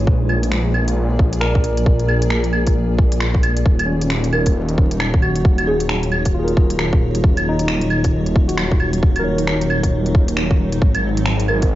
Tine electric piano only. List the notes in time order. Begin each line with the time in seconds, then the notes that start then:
Already playing: C#5
1.40 A#4
1.46 D5
3.86 C#4
5.22 F#4
6.34 F4
6.39 G#4
6.44 A#4
7.49 D#4
8.48 F#4
9.19 A#4
9.24 C#5